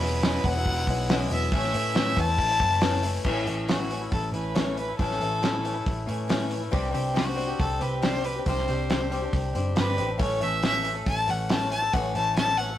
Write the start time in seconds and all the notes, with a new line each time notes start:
Already playing: E1 B4
0.01 F#3 G#3 B3 E4, snare, open hi-hat
0.23 E2 B2 F#3 G#3 B3 E4, snare, open hi-hat
0.44 E1 F#3 G#3 B3 F#5, kick, open hi-hat
0.48 E4
0.55 F#3 G#3 B3 E4
0.65 E1, kick, open hi-hat
0.77 F#3 G#3 B3 E4
0.87 B1 F#3 G#3 B3 E4, kick, open hi-hat
1.09 E2 B2 F#3 G#3 B3 E4, snare, open hi-hat
1.30 E1 F#3 G#3 B3 E4 E5, open hi-hat
1.52 A1 A2 E3 A3 C#4 E4 E5, kick, open hi-hat
1.64 snare
1.73 A2 E3 A3 C#4 E4, open hi-hat
1.94 A2 E3 A3 C#4 E4, snare, open hi-hat
2.16 E2 E3 A3 C#4 E4 A5, kick, open hi-hat
2.27 A3 C#4 E4
2.38 A1, kick, open hi-hat
2.50 A3 C#4 E4
2.60 F#1 E3 A3 C#4 E4, kick, open hi-hat
2.81 A2 E3 A3 C#4 E4, snare, open hi-hat
3.03 E3 A3 C#4 E4, open hi-hat
3.24 A1 A2 E3 A3 C#4 E4, kick, crash
3.45 A1 E3 A3 C#4 E4, open hi-hat
3.67 A2 E3 A3 C#4 E4 F#4, snare, open hi-hat
3.78 A3 C#4 E4
3.90 E3 A3 C#4 E4, open hi-hat
4.01 A3 C#4 E4
4.12 A1 A4, kick, open hi-hat
4.32 A1 E3 A3 C#4 E4 B4, open hi-hat
4.55 A2 E3 A3 C#4 E4 C#5, snare, open hi-hat
4.77 E3 A3 C#4 E4 B4, open hi-hat
4.88 A3 C#4 E4
4.98 A1 A2 E3 A3 C#4 E4 A4, kick, open hi-hat
5.11 snare
5.20 A1 E3 A3 C#4 E4, open hi-hat
5.42 A2 E3 A3 C#4 E4, snare, open hi-hat
5.53 A3 C#4 E4
5.63 E3 A3 C#4 E4, open hi-hat
5.74 A3 C#4 E4
5.86 A1, kick, open hi-hat
6.06 A2 E3 A3 C#4 E4, open hi-hat
6.28 A2 E3 A3 C#4 E4, snare, open hi-hat
6.50 E3 A3 C#4 E4, open hi-hat
6.60 A3 C#4 E4
6.71 C2 C3 G3 C4 D4 G4, kick, open hi-hat
6.91 G3 C4 D4 G4, open hi-hat
6.95 C2
7.14 C3 G3 C4 D4 F#4 G4, snare, open hi-hat
7.25 C4 D4 G4
7.35 G3 C4 D4 G4, open hi-hat
7.47 C4 D4 G4
7.60 C2 A4, kick, open hi-hat
7.79 C2 G3 C4 D4 G4 B4, open hi-hat
8.02 C3 G3 C4 D4 G4 C5, snare, open hi-hat
8.24 G3 C4 D4 G4 B4, open hi-hat
8.36 C4 D4 G4
8.46 C2 C3 G3 C4 D4 G4 C5, kick, open hi-hat
8.58 snare
8.68 C2 G3 C4 D4 G4, open hi-hat
8.89 C3 G3 C4 D4 G4, snare, open hi-hat
9.00 C4 D4 G4
9.10 G3 C4 D4 G4, open hi-hat
9.21 C4 D4 G4
9.33 C2, kick, open hi-hat
9.53 F#1 G3 C4 D4 G4, open hi-hat
9.75 G1 C3 G3 C4 D4 G4 B4, snare, open hi-hat
9.97 A1 G3 C4 D4 G4, open hi-hat
10.07 C4 D4 G4
10.18 A1 A2 E3 A3 C#4 A4 C#5, kick, open hi-hat
10.40 A1 E3 A3 C#4 A4 E5, open hi-hat
10.62 A2 E3 A3 C#4 A4 E5, snare, open hi-hat
10.73 A3 C#4 A4
10.83 E3 A3 C#4 A4, open hi-hat
10.93 A3 C#4 A4
11.06 A1 A5, kick, open hi-hat
11.27 A1 E3 A3 C#4 A4 F#5, open hi-hat
11.49 A2 E3 A3 C#4 A4 A5, snare, open hi-hat
11.71 E3 A3 C#4 A4 A5, open hi-hat
11.82 A3 C#4 A4
11.93 A1 A2 E3 A3 C#4 A4 F#5, kick, open hi-hat
12.15 A1 E3 A3 C#4 A4 A5, open hi-hat
12.36 A2 E3 A3 C#4 A4 A5, snare, open hi-hat
12.47 A3 C#4 A4
12.58 E3 A3 C#4 A4 F#5, open hi-hat
12.70 A3 C#4 A4